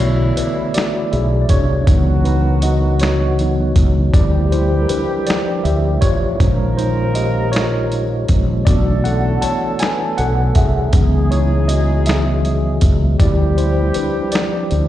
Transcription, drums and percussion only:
0.00 closed hi-hat
0.37 closed hi-hat
0.74 snare, closed hi-hat
1.13 closed hi-hat
1.49 kick, closed hi-hat
1.87 kick, closed hi-hat
2.25 closed hi-hat
2.62 closed hi-hat
2.99 snare, closed hi-hat
3.39 closed hi-hat
3.76 kick, closed hi-hat
4.14 kick, closed hi-hat
4.52 closed hi-hat
4.89 closed hi-hat
5.27 snare, closed hi-hat
5.65 closed hi-hat
6.02 kick, closed hi-hat
6.40 kick, closed hi-hat
6.79 closed hi-hat
7.15 closed hi-hat
7.53 snare, closed hi-hat
7.92 closed hi-hat
8.28 kick, closed hi-hat
8.67 kick, closed hi-hat
9.05 closed hi-hat
9.42 closed hi-hat
9.79 snare, closed hi-hat
10.18 closed hi-hat
10.55 kick, closed hi-hat
10.93 kick, closed hi-hat
11.32 closed hi-hat
11.69 closed hi-hat
12.06 snare, closed hi-hat
12.45 closed hi-hat
12.81 kick, closed hi-hat
13.20 kick, closed hi-hat
13.58 closed hi-hat
13.94 closed hi-hat
14.32 snare, closed hi-hat
14.71 closed hi-hat

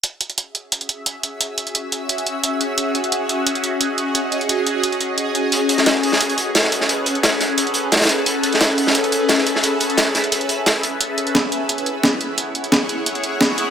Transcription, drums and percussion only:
0.04 closed hi-hat
0.21 closed hi-hat
0.30 closed hi-hat
0.38 closed hi-hat
0.55 closed hi-hat
0.72 closed hi-hat
0.81 closed hi-hat
0.89 closed hi-hat
1.06 closed hi-hat
1.23 closed hi-hat
1.41 closed hi-hat
1.58 closed hi-hat
1.67 closed hi-hat
1.75 closed hi-hat
1.92 closed hi-hat
2.09 closed hi-hat
2.18 closed hi-hat
2.26 closed hi-hat
2.44 closed hi-hat
2.61 closed hi-hat
2.78 closed hi-hat
2.95 closed hi-hat
3.04 closed hi-hat
3.12 closed hi-hat
3.29 closed hi-hat
3.47 closed hi-hat
3.55 closed hi-hat
3.64 closed hi-hat
3.81 closed hi-hat
3.98 closed hi-hat
4.15 closed hi-hat
4.32 closed hi-hat
4.41 closed hi-hat
4.49 closed hi-hat
4.66 closed hi-hat
4.84 closed hi-hat
4.92 closed hi-hat
5.01 closed hi-hat
5.18 closed hi-hat
5.35 closed hi-hat
5.52 closed hi-hat
5.69 closed hi-hat
5.78 snare, closed hi-hat
5.86 snare, closed hi-hat
6.03 closed hi-hat, open hi-hat
6.12 snare
6.20 closed hi-hat
6.30 closed hi-hat
6.38 closed hi-hat
6.55 snare, closed hi-hat
6.64 snare
6.72 closed hi-hat
6.81 snare
6.89 closed hi-hat
7.06 closed hi-hat
7.15 closed hi-hat
7.23 snare, closed hi-hat
7.40 snare, closed hi-hat
7.58 closed hi-hat
7.67 closed hi-hat
7.74 closed hi-hat
7.92 snare, closed hi-hat
7.96 snare, closed hi-hat
8.01 snare, closed hi-hat
8.05 snare, closed hi-hat
8.09 closed hi-hat
8.26 closed hi-hat
8.43 closed hi-hat
8.53 snare, closed hi-hat
8.61 snare, closed hi-hat
8.78 closed hi-hat, open hi-hat
8.87 snare
8.94 closed hi-hat
9.04 closed hi-hat
9.12 closed hi-hat
9.29 snare, closed hi-hat
9.38 snare
9.47 closed hi-hat
9.55 snare
9.63 closed hi-hat
9.80 closed hi-hat
9.90 closed hi-hat
9.97 snare, closed hi-hat
10.15 snare, closed hi-hat
10.24 closed hi-hat
10.32 closed hi-hat
10.41 closed hi-hat
10.49 closed hi-hat
10.66 snare, closed hi-hat
10.83 closed hi-hat
11.01 closed hi-hat
11.18 closed hi-hat
11.27 closed hi-hat
11.35 snare, closed hi-hat
11.52 closed hi-hat
11.69 closed hi-hat
11.78 closed hi-hat
11.86 closed hi-hat
12.03 snare, closed hi-hat
12.21 closed hi-hat
12.38 closed hi-hat
12.55 closed hi-hat
12.64 closed hi-hat
12.72 snare, closed hi-hat
12.89 closed hi-hat
13.06 closed hi-hat
13.15 closed hi-hat
13.24 closed hi-hat
13.41 snare, closed hi-hat
13.58 closed hi-hat

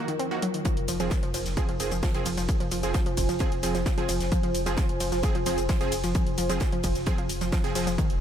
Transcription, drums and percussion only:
0.08 closed hi-hat
0.19 closed hi-hat
0.42 closed hi-hat
0.54 closed hi-hat
0.65 kick, closed hi-hat, shaker
0.77 closed hi-hat
0.88 closed hi-hat, open hi-hat, ride, shaker
1.00 closed hi-hat, shaker
1.10 kick, snare, closed hi-hat, shaker
1.23 closed hi-hat
1.34 closed hi-hat, open hi-hat, ride, shaker
1.46 snare, closed hi-hat, shaker
1.57 kick, closed hi-hat, shaker
1.69 closed hi-hat
1.80 closed hi-hat, open hi-hat, ride, shaker
1.92 closed hi-hat, shaker
2.03 kick, snare, closed hi-hat, open hi-hat, shaker
2.14 closed hi-hat
2.25 closed hi-hat, open hi-hat, ride, shaker
2.37 snare, closed hi-hat, shaker
2.48 kick, closed hi-hat, shaker
2.60 closed hi-hat
2.71 closed hi-hat, open hi-hat, ride, shaker
2.83 closed hi-hat, shaker
2.94 kick, snare, closed hi-hat, shaker
3.06 closed hi-hat
3.17 kick, closed hi-hat, open hi-hat, ride, shaker
3.28 snare, closed hi-hat, shaker
3.39 kick, closed hi-hat, shaker
3.52 closed hi-hat
3.63 closed hi-hat, open hi-hat, ride, shaker
3.75 snare, closed hi-hat, shaker
3.86 kick, snare, closed hi-hat, shaker
3.98 closed hi-hat
4.08 closed hi-hat, open hi-hat, ride, shaker
4.20 snare, closed hi-hat, shaker
4.32 kick, closed hi-hat, shaker
4.43 closed hi-hat
4.55 closed hi-hat, open hi-hat, ride, shaker
4.66 closed hi-hat, shaker
4.77 kick, snare, closed hi-hat, shaker
4.89 closed hi-hat
5.00 closed hi-hat, open hi-hat, ride, shaker
5.12 snare, closed hi-hat, shaker
5.23 kick, closed hi-hat, shaker
5.35 closed hi-hat
5.46 closed hi-hat, open hi-hat, ride, shaker
5.58 closed hi-hat, shaker
5.69 kick, snare, closed hi-hat, open hi-hat, shaker
5.81 closed hi-hat
5.92 closed hi-hat, open hi-hat, ride, shaker
6.04 snare, closed hi-hat, shaker
6.15 kick, closed hi-hat, shaker
6.27 closed hi-hat
6.38 closed hi-hat, open hi-hat, ride, shaker
6.50 closed hi-hat, shaker
6.60 kick, snare, closed hi-hat, shaker
6.72 closed hi-hat
6.83 kick, closed hi-hat, open hi-hat, ride, shaker
6.95 snare, closed hi-hat, shaker
7.06 kick, closed hi-hat, shaker
7.18 closed hi-hat
7.29 closed hi-hat, open hi-hat, ride, shaker
7.41 snare, closed hi-hat, shaker
7.52 kick, snare, closed hi-hat, shaker
7.64 closed hi-hat
7.75 closed hi-hat, open hi-hat, ride, shaker
7.87 snare, closed hi-hat, shaker
7.98 kick, closed hi-hat, shaker
8.10 closed hi-hat

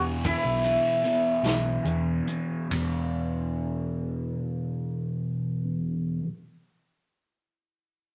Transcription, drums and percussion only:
0.24 kick, closed hi-hat
0.64 closed hi-hat
1.04 closed hi-hat
1.44 snare, closed hi-hat
1.85 closed hi-hat
2.27 closed hi-hat
2.71 kick, ride

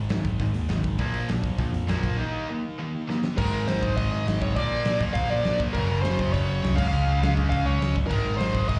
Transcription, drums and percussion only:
0.09 snare, open hi-hat
0.24 kick, open hi-hat
0.40 kick, open hi-hat
0.54 open hi-hat
0.69 snare, open hi-hat
0.84 kick, open hi-hat
0.99 kick, open hi-hat
1.14 open hi-hat
1.29 snare, open hi-hat
1.43 kick, open hi-hat
1.58 kick, open hi-hat
1.74 open hi-hat
1.89 snare, open hi-hat
2.03 kick, open hi-hat
3.10 snare
3.24 snare
3.38 kick, crash
3.68 snare, open hi-hat
3.83 kick
3.97 kick, open hi-hat
4.27 snare, open hi-hat
4.42 kick
4.56 kick, open hi-hat
4.85 snare, open hi-hat
5.01 kick
5.14 kick, open hi-hat
5.44 snare, open hi-hat
5.60 kick
5.74 kick, open hi-hat
6.04 snare, open hi-hat
6.19 kick
6.34 kick, open hi-hat
6.64 snare, open hi-hat
6.78 kick, crash
7.23 snare, open hi-hat
7.37 kick
7.52 kick, open hi-hat
7.82 snare, open hi-hat
7.96 kick
8.11 kick, crash
8.40 snare, open hi-hat
8.55 kick
8.69 kick, open hi-hat

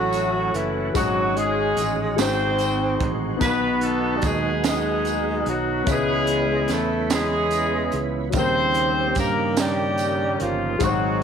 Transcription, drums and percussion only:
0.13 closed hi-hat, tambourine
0.54 closed hi-hat
0.95 kick, closed hi-hat, tambourine
1.37 closed hi-hat
1.77 closed hi-hat, tambourine
2.18 snare, closed hi-hat, tambourine
2.58 closed hi-hat, tambourine
3.00 kick, closed hi-hat
3.41 kick, closed hi-hat, tambourine
3.81 closed hi-hat
4.22 kick, closed hi-hat, tambourine
4.64 snare, closed hi-hat, tambourine
5.05 closed hi-hat, tambourine
5.46 closed hi-hat
5.87 kick, closed hi-hat, tambourine
6.27 closed hi-hat
6.68 snare, closed hi-hat, tambourine
7.10 snare, closed hi-hat, tambourine
7.51 closed hi-hat, tambourine
7.92 closed hi-hat
8.32 kick, closed hi-hat, tambourine
8.74 closed hi-hat
9.15 kick, closed hi-hat, tambourine
9.57 snare, closed hi-hat, tambourine
9.98 closed hi-hat, tambourine
10.40 closed hi-hat
10.80 kick, closed hi-hat, tambourine

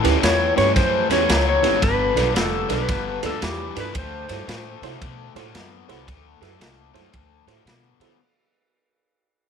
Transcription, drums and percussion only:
0.05 snare, ride
0.23 snare, ride
0.58 snare, ride
0.76 kick, snare, ride
1.10 snare, ride
1.29 snare, ride
1.64 snare, ride
1.82 kick, snare, ride
2.17 snare, ride
2.36 snare, ride
2.70 snare, ride
2.89 kick, snare, ride
3.23 snare, ride
3.42 snare, ride
3.76 snare, ride
3.95 kick, ride
4.29 snare, ride
4.49 snare, ride
4.83 snare, ride
5.02 kick, ride
5.36 snare, ride
5.55 snare, ride
5.89 snare, ride
6.08 kick, ride
6.42 snare, ride
6.61 snare, ride
6.95 snare, ride
7.13 kick, ride
7.48 snare, ride
7.67 snare, ride
8.01 snare, ride

